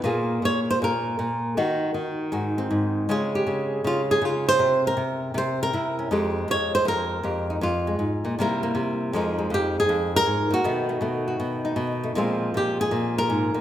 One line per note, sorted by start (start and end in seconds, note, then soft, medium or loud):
0.04 0.41 A#2 medium
0.04 1.55 A#3 soft
0.04 1.55 F4 medium
0.04 0.81 G#4 medium
0.42 0.81 A#2 medium
0.42 0.59 C#5 loud
0.70 0.78 C5 loud
0.82 1.18 A#2 medium
0.82 1.57 A#4 medium
1.19 1.57 A#2 medium
1.57 1.93 D#3 medium
1.57 2.58 D#4 medium
1.57 2.31 F#4 medium
1.94 3.08 D#3 medium
2.32 2.69 G#2 medium
2.32 3.07 F#4 medium
2.58 3.09 C4 medium
2.71 3.07 G#2 medium
3.09 3.45 C#3 medium
3.09 4.58 G#3 soft
3.09 4.90 C4 medium
3.09 3.34 F4 soft
3.09 3.72 G#4 medium
3.35 4.10 G4 medium
3.47 3.83 C#3 medium
3.84 4.20 C#3 medium
3.84 4.01 F4 medium
4.11 4.25 G#4 medium
4.22 4.58 C#3 medium
4.22 4.48 F4 medium
4.49 4.85 C5 loud
4.59 4.96 C3 medium
4.87 5.37 A#4 medium
4.97 5.33 C3 medium
5.34 5.72 C3 medium
5.34 5.61 C5 medium
5.63 6.12 A#4 medium
5.73 6.09 C3 medium
5.73 6.10 E4 soft
5.99 6.10 C#4 soft
6.11 6.47 F2 medium
6.11 7.61 G#3 medium
6.11 7.49 D#4 soft
6.11 7.24 G4 medium
6.48 6.84 F2 medium
6.48 6.74 C#5 loud
6.75 6.87 C5 loud
6.85 7.22 F2 medium
6.85 7.63 A#4 loud
7.23 7.60 F2 medium
7.23 7.64 G4 soft
7.50 7.61 D#4 soft
7.61 7.98 F2 medium
7.61 8.38 F4 medium
7.87 8.38 G#3 soft
7.99 8.24 G#2 medium
8.25 8.38 A#2 medium
8.39 8.73 C3 medium
8.39 9.13 G3 medium
8.39 8.62 A#3 medium
8.39 9.13 E4 medium
8.39 9.14 A#4 medium
8.63 9.12 A#3 medium
8.75 9.11 C3 medium
9.13 9.49 F2 medium
9.13 10.65 F3 medium
9.13 9.37 G#3 medium
9.13 10.53 D#4 medium
9.13 9.53 A#4 medium
9.38 10.65 G#3 soft
9.50 9.88 F2 medium
9.50 9.77 G4 medium
9.80 10.16 G#4 medium
9.89 10.26 F2 medium
10.16 10.66 A#4 loud
10.26 10.51 G#2 medium
10.51 10.64 A#2 medium
10.51 11.26 F#4 medium
10.64 11.00 B2 medium
10.64 12.16 D#3 medium
10.64 10.88 A3 medium
10.89 11.01 A3 soft
11.01 11.38 B2 medium
11.01 12.02 A3 soft
11.28 12.15 F#4 soft
11.40 11.75 B2 medium
11.65 12.14 D#4 medium
11.76 12.13 B2 medium
12.03 12.15 A3 soft
12.15 12.53 A#2 medium
12.15 13.61 F3 medium
12.15 13.61 G#3 medium
12.15 13.61 C4 medium
12.15 12.55 F4 medium
12.54 12.90 A#2 medium
12.54 12.80 G4 medium
12.81 13.17 G#4 loud
12.91 13.53 A#2 medium
13.18 13.61 A#4 loud
13.30 13.54 G#2 medium
13.54 13.61 A#2 medium